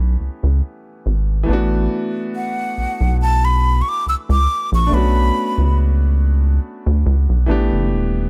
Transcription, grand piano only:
Already playing: E3 A3 B3 C#4 G4
1.43 E3 A3
1.48 B3 D4
1.53 F#4
4.87 A3 D4
4.91 B3 C#4
4.96 F#4
7.46 E3 A3 B3 D4
7.51 G4

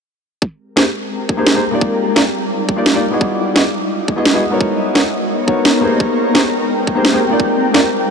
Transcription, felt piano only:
0.76 A#3 D#4 G4 G#4 C5
1.37 A#3 D#4 G4 G#4 C5
1.54 A#3 D#4 G4 G#4 C5
1.71 A#3 D#4 F4 G4 D5
2.16 A#3 D#4 F4 G4 D5
2.76 A#3 D#4 F4 G4 D5
2.94 A#3 D#4 F4 G4 D5
3.10 B3 E4 F#4 G#4 D#5
3.55 B3 E4 F#4 G#4 D#5
4.16 B3 E4 F#4 G#4 D#5
4.33 B3 E4 F#4 G#4 D#5
4.50 B3 D#4 F#4 A#4 C#5
4.94 B3 D#4 F#4 A#4 C#5
5.47 B3 D#4 F#4 A#4 C#5
5.81 A#3 D#4 G4 G#4 C5
6.34 A#3 D#4 G4 G#4 C5
6.95 A#3 D#4 G4 G#4 C5
7.12 A#3 D#4 G4 G#4 C5
7.29 A#3 D#4 F4 G4 D5
7.73 A#3 D#4 F4 G4 D5

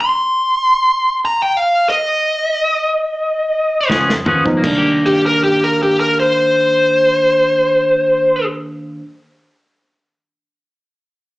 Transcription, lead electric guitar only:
0.01 C6
1.25 A#5
1.42 G5
1.57 F5
1.90 D#5
5.06 G4
5.26 A#4
5.44 G4
5.64 A#4
5.83 G4
6.00 A#4
6.20 C5

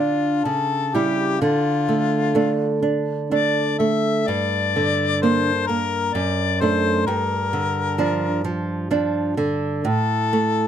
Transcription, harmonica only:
Already playing: F4
0.45 A4
0.94 G4
1.41 F4
3.30 D5
3.78 E5
4.28 D5
5.22 C5
5.67 A#4
6.14 D5
6.61 C5
7.07 A#4
9.84 A4

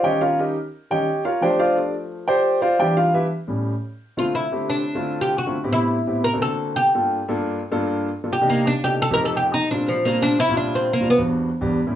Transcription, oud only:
4.19 F4
4.35 E4
4.70 D4
5.21 G4
5.38 F#4
5.73 E4
6.24 A#4
6.42 A4
6.76 G4
8.33 G4
8.49 A#3
8.67 D4
8.84 G4
9.02 A4
9.14 A#4
9.25 A4
9.37 G4
9.54 D#4
9.71 D4
9.88 F3
10.05 A#3
10.22 D4
10.40 E4
10.57 D4
10.75 C4
10.93 A#3
11.10 B3

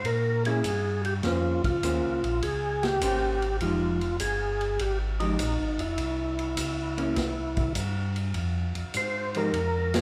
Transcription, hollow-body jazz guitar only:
0.46 A#3 C#4 E4
1.23 A#3 C#4 G#4 C5
1.83 A#3 C#4 G#4 C5
3.02 A#3 C#4 G#4 C5
3.61 F3 G#3 D#4 G4
5.20 F3 G#3 D#4 G4
6.98 A#3 C#4 E4
9.36 F3 G#3 D#4 G4

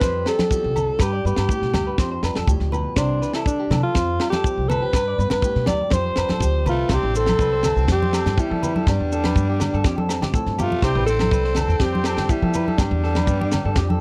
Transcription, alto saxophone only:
Already playing: B4
0.28 A4
1.02 G4
1.27 G4
2.96 D4
3.35 E4
3.46 D4
3.83 F4
4.30 G4
4.69 B4
5.31 B4
5.67 D5
5.93 C5
6.69 F4
6.94 G4
7.17 A4
7.92 G4
8.40 E4
8.88 D4
10.59 F4
10.84 G4
11.06 A4
11.81 G4
12.30 E4
12.78 D4

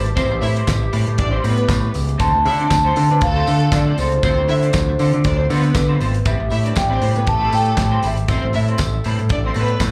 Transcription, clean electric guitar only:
0.06 muted clean electric guitar stroke
0.16 G3 C4 E4 B4
0.31 muted clean electric guitar stroke
0.43 muted clean electric guitar stroke
0.56 G3 C4 E4 C5
0.82 muted clean electric guitar stroke
0.92 G3 C4 E4 B4
1.06 muted clean electric guitar stroke
1.18 muted clean electric guitar stroke
1.31 G3 C4 E4 C5
1.42 G3 C4 E4 B4
1.57 muted clean electric guitar stroke
1.68 muted clean electric guitar stroke
1.82 muted clean electric guitar stroke
2.07 muted clean electric guitar stroke
2.18 C4 F4 A4 C5
2.33 muted clean electric guitar stroke
2.44 muted clean electric guitar stroke
2.58 C4 F4 A4 C5
2.84 C4 F4 A4 C5
2.96 C4 F4 A4 C5
3.10 muted clean electric guitar stroke
3.23 muted clean electric guitar stroke
3.36 C4 F4 A4 C5
3.48 muted clean electric guitar stroke
3.61 muted clean electric guitar stroke
3.73 muted clean electric guitar stroke
3.87 C4 F4 A4 D5
3.99 C4 F4 A4 C5
4.13 muted clean electric guitar stroke
4.24 C4 F4 A4 C5
4.37 muted clean electric guitar stroke
4.49 muted clean electric guitar stroke
4.63 C4 F4 A4 D5
4.88 muted clean electric guitar stroke
4.99 C4 F4 A4 C5
5.14 muted clean electric guitar stroke
5.25 muted clean electric guitar stroke
5.39 muted clean electric guitar stroke
5.50 C4 F4 A4 C5
5.65 muted clean electric guitar stroke
5.75 muted clean electric guitar stroke
5.88 C4 F4 A4 C5
6.00 C4 F4 A4 C5
6.14 muted clean electric guitar stroke
6.26 G3 C4 E4 B4
6.40 muted clean electric guitar stroke
6.51 muted clean electric guitar stroke
6.65 G3 C4 E4 B4
6.77 muted clean electric guitar stroke
6.90 G3 C4 E4 B4
7.01 G3 C4 E4 B4
7.15 muted clean electric guitar stroke
7.27 muted clean electric guitar stroke
7.41 G3 C4 E4 B4
7.52 muted clean electric guitar stroke
7.65 muted clean electric guitar stroke
7.91 G3 C4 E4 C5
8.02 G3 C4 E4 B4
8.16 muted clean electric guitar stroke
8.28 G3 C4 E4 B4
8.44 muted clean electric guitar stroke
8.54 muted clean electric guitar stroke
8.68 G3 C4 E4 C5
8.95 muted clean electric guitar stroke
9.04 G3 C4 E4 B4
9.20 muted clean electric guitar stroke
9.31 muted clean electric guitar stroke
9.46 G3 C4 E4 C5
9.57 G3 C4 E4 B4
9.71 muted clean electric guitar stroke
9.82 muted clean electric guitar stroke

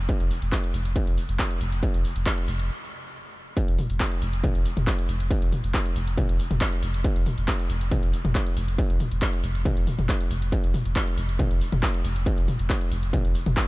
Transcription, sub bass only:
0.20 F1
0.42 F1
0.74 F1
0.85 F1
1.07 F1
1.29 F1
1.61 F1
1.72 F1
1.94 F1
2.16 F1
2.48 F1
2.59 F1
3.68 F1
3.90 F1
4.22 F1
4.33 F1
4.55 F1
4.77 F1
5.09 F1
5.20 F1
5.42 F1
5.64 F1
5.96 F1
6.07 F1
6.29 F1
6.51 F1
6.83 F1
6.94 F1
7.16 F1
7.37 F1
7.70 F1
7.81 F1
8.03 F1
8.24 F1
8.57 F1
8.68 F1
8.90 F1
9.11 F1
9.43 F1
9.55 F1
9.76 F1
9.98 F1
10.30 F1
10.42 F1
10.63 F1
10.85 F1
11.17 F1
11.29 F1
11.51 F1
11.72 F1
12.04 F1
12.16 F1
12.38 F1
12.59 F1
12.91 F1
13.03 F1
13.24 F1
13.46 F1

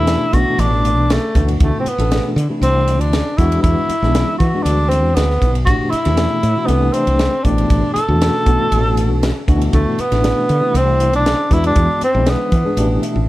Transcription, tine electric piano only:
Already playing: B2 E3 A3 D4 A4
0.33 B2 E3 A3 D4 F#4
1.35 B2 E3 A3 D4 F#4
1.99 B2 E3 A3 D4 A4
2.49 C3 E3 A3 D4 E4
3.38 E3 G#3 B3 D4 F#4
4.01 E3 G#3 B3 D4 E4
4.53 E3 G#3 B3 D4 F#4
5.66 B2 E3 A3 D4 G4
6.06 B2 E3 A3 D4 G4
6.56 B2 E3 A3 D4 F#4
6.69 C3 E3 A3 D4 G4
7.45 B2 E3 A3 D4 G4
8.08 B2 E3 A3 D4 F#4
8.46 B2 E3 A3 D4 F#4
9.47 B2 E3 A3 D4 F#4
10.11 B2 E3 A3 D4 E4
10.60 C3 E3 A3 D4 E4
11.49 E3 G#3 B3 D4 F#4
12.14 E3 G#3 B3 D4 E4
12.64 E3 G#3 B3 D4 G#4
12.76 B2 E3 A3 D4 G4
13.02 E5

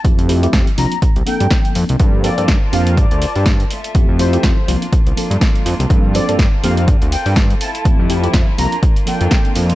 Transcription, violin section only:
2.00 F4 A#4 C5 A5
3.70 F4 A4 E5
4.68 A#3 D4
5.90 C4 A4
7.61 E4
8.58 A#3 D4 F4

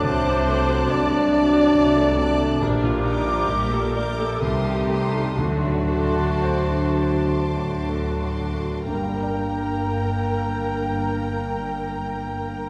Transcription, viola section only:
0.05 C5
0.89 D5
2.62 D4
2.84 F4
3.05 D#4
3.29 F4
3.49 G4
3.73 A4
3.95 A#4
4.20 A4
4.42 G4
5.39 F#4
7.56 F#4
8.85 A#4

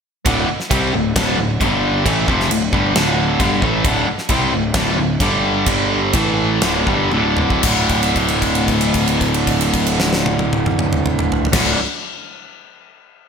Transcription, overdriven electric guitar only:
0.25 D2 A2 D3
0.48 muted overdriven electric guitar stroke
0.70 C3 G3 C4
0.94 D2 A2
1.16 D2 A2 D3
1.38 D2 A2
1.60 G2 D3 G3
2.05 A2 E3 A3
2.27 F2 C3 F3
2.50 D2 A2
2.72 G2 D3 G3
2.95 D2 A2 D3
3.40 G2 D3 G3
3.63 A2 E3 A3
3.85 D2 A2 D3
4.07 muted overdriven electric guitar stroke
4.29 C3 G3 C4
4.53 D2 A2
4.75 D2 A2 D3
4.99 D2 A2
5.21 G2 D3 G3
5.67 G2 D3 G3
6.13 A2 E3 A3
6.63 D2 A2 D3
6.87 G2 D3 G3
7.12 D2 A2 D3
7.63 D2 A2 D3
11.52 D2 A2 D3

